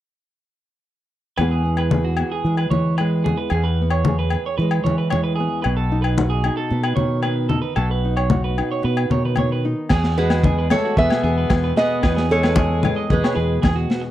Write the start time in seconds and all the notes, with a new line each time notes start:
1.38 E2 E3 G#3 B3 G#4 B4, muted conga, low agogo
1.51 G#4
1.66 B3
1.77 B4, low agogo
1.91 G#4, high conga
2.04 F#4
2.17 B3, muted conga, low agogo
2.32 G#4
2.44 E3 G#3, muted conga
2.57 B4, low agogo
2.70 E3 C#5, muted conga, high conga
2.98 G#3 B4, low agogo
3.24 B3 G#4, high conga
3.37 B4
3.50 E2 G#4, muted conga, low agogo
3.54 E2
3.64 B4
3.81 B3
3.90 C#5, low agogo
4.05 G#4, high conga
4.19 B4
4.30 muted nylon-string guitar stroke, muted conga, low agogo
4.46 C#5
4.58 E3 G#3 B4, muted conga
4.71 low agogo
4.84 E3 C#5, muted conga, high conga
4.98 B4
5.10 G#3 C#5, high conga, low agogo
5.24 B4
5.36 G#4
5.40 B3
5.62 B1 B2 B4, muted conga, low agogo
5.77 A4
5.92 D#4
6.02 B4, low agogo
6.17 F#4, high conga
6.30 G#4
6.44 D#4, muted conga, low agogo
6.57 A4
6.71 B2 B3, muted conga
6.84 B4, low agogo
6.96 B2 D#3 C#5, muted conga, high conga
7.23 B3 B4, low agogo
7.49 D#4 A4, high conga
7.62 B4
7.76 B1 B2 A4, muted conga, low agogo
7.91 B4
8.05 D#4
8.17 C#5, low agogo
8.30 F#4, high conga
8.44 B4
8.58 D#4, low agogo
8.71 C#5
8.82 B2 B3 B4, muted conga
8.97 low agogo
9.10 B2 D#3 C#5, muted conga, high conga
9.25 B4
9.36 B3 C#5, high conga, low agogo
9.52 B4
9.65 D#4
9.89 E2 G#4, kick, snare, crash, muted conga, low agogo
10.04 snare
10.17 G#3 B3 F#4 G#4 B4, muted conga
10.30 snare, low agogo
10.44 G#4, kick, high conga
10.58 B4
10.70 G#3 A3 A4 C#5, snare, high conga, low agogo
10.85 F#4
10.97 E2 B2 B3 G#4 B4 E5, kick, muted conga
11.10 snare, low agogo
11.23 E2 G#4
11.38 B4
11.50 E2 G#3, kick, snare, high conga, low agogo
11.64 B4
11.77 B3 G#4 B4 D#5, snare, muted conga
12.02 E2 B4, kick, snare, muted conga, low agogo
12.16 G#4, snare
12.29 G#3 B3 A4 C#5, muted conga
12.43 B4, snare, low agogo
12.56 G#4, kick, high conga
12.83 G#3 B4, high conga, low conga, low agogo
12.96 D#5
13.10 E2 B2 G#4 B4, kick, muted conga, high conga
13.14 G#3
13.24 C#5, snare, low agogo
13.35 E2 G#4 B4
13.62 E2 G#3 G#4, kick, snare, high conga, low agogo
13.76 F#4
13.90 B3, snare, muted conga
14.02 muted clean electric guitar stroke